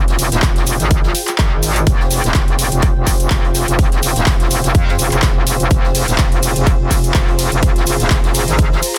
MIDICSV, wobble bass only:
0, 0, Header, 1, 2, 480
1, 0, Start_track
1, 0, Key_signature, -4, "minor"
1, 0, Tempo, 480000
1, 1868, Time_signature, 4, 2, 24, 8
1, 8983, End_track
2, 0, Start_track
2, 0, Title_t, "Wobble bass"
2, 0, Program_c, 0, 39
2, 0, Note_on_c, 0, 29, 95
2, 170, Note_off_c, 0, 29, 0
2, 188, Note_on_c, 0, 29, 95
2, 299, Note_off_c, 0, 29, 0
2, 320, Note_on_c, 0, 27, 99
2, 411, Note_off_c, 0, 27, 0
2, 428, Note_on_c, 0, 29, 97
2, 779, Note_off_c, 0, 29, 0
2, 799, Note_on_c, 0, 32, 100
2, 1130, Note_off_c, 0, 32, 0
2, 1388, Note_on_c, 0, 32, 100
2, 1851, Note_off_c, 0, 32, 0
2, 1868, Note_on_c, 0, 29, 101
2, 2219, Note_off_c, 0, 29, 0
2, 2240, Note_on_c, 0, 27, 99
2, 2331, Note_off_c, 0, 27, 0
2, 2348, Note_on_c, 0, 29, 98
2, 2699, Note_off_c, 0, 29, 0
2, 2720, Note_on_c, 0, 29, 103
2, 2939, Note_off_c, 0, 29, 0
2, 2961, Note_on_c, 0, 29, 98
2, 3291, Note_off_c, 0, 29, 0
2, 3308, Note_on_c, 0, 29, 95
2, 3659, Note_off_c, 0, 29, 0
2, 3680, Note_on_c, 0, 29, 94
2, 4010, Note_off_c, 0, 29, 0
2, 4028, Note_on_c, 0, 29, 95
2, 4139, Note_off_c, 0, 29, 0
2, 4160, Note_on_c, 0, 27, 100
2, 4251, Note_off_c, 0, 27, 0
2, 4268, Note_on_c, 0, 29, 97
2, 4619, Note_off_c, 0, 29, 0
2, 4640, Note_on_c, 0, 29, 94
2, 4731, Note_off_c, 0, 29, 0
2, 4748, Note_on_c, 0, 41, 95
2, 4971, Note_off_c, 0, 41, 0
2, 4988, Note_on_c, 0, 29, 103
2, 5099, Note_off_c, 0, 29, 0
2, 5119, Note_on_c, 0, 29, 98
2, 5210, Note_off_c, 0, 29, 0
2, 5228, Note_on_c, 0, 29, 94
2, 5579, Note_off_c, 0, 29, 0
2, 5599, Note_on_c, 0, 29, 97
2, 5690, Note_off_c, 0, 29, 0
2, 5707, Note_on_c, 0, 29, 99
2, 6058, Note_off_c, 0, 29, 0
2, 6079, Note_on_c, 0, 27, 101
2, 6170, Note_off_c, 0, 27, 0
2, 6188, Note_on_c, 0, 29, 99
2, 6539, Note_off_c, 0, 29, 0
2, 6559, Note_on_c, 0, 29, 99
2, 6778, Note_off_c, 0, 29, 0
2, 6798, Note_on_c, 0, 29, 98
2, 7130, Note_off_c, 0, 29, 0
2, 7148, Note_on_c, 0, 29, 97
2, 7499, Note_off_c, 0, 29, 0
2, 7518, Note_on_c, 0, 29, 95
2, 7850, Note_off_c, 0, 29, 0
2, 7866, Note_on_c, 0, 29, 101
2, 7978, Note_off_c, 0, 29, 0
2, 7998, Note_on_c, 0, 27, 100
2, 8090, Note_off_c, 0, 27, 0
2, 8107, Note_on_c, 0, 29, 99
2, 8458, Note_off_c, 0, 29, 0
2, 8478, Note_on_c, 0, 32, 96
2, 8810, Note_off_c, 0, 32, 0
2, 8983, End_track
0, 0, End_of_file